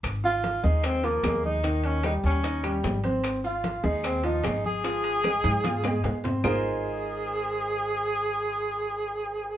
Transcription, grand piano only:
\new Staff \with { instrumentName = "Grand piano" } { \time 4/4 \key aes \major \tempo 4 = 150 r8 <f' f''>4 <aes aes'>4 <f f'>8 <aes aes'>4 | <ees ees'>4 <g g'>4 <ees' ees''>8 <g g'>4 <c' c''>8~ | <c' c''>8 <f' f''>4 <aes aes'>4 <f f'>8 <aes aes'>4 | <f f'>4 <aes aes'>4 <f' f''>8 <aes aes'>4 <c' c''>8 |
<aes ees' f' aes' bes' c''>1~ | <aes ees' f' aes' bes' c''>1 | }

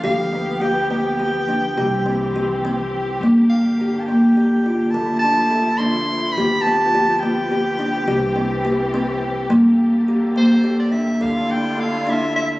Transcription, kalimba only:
\new Staff \with { instrumentName = "Kalimba" } { \time 11/8 \key g \dorian \tempo 4 = 105 g'8 b8 g'8 b8 g'8 d'8 g'8 c'8 g'8 c'4 | bes4 g'8 bes8 g'8 f'8 a'8 d'8 a'8 d'4 | g'8 b8 g'8 b8 g'8 d'8 g'8 c'8 g'8 c'4 | bes4 g'8 bes8 g'8 d'8 a'8 d'8 a'8 d'4 | }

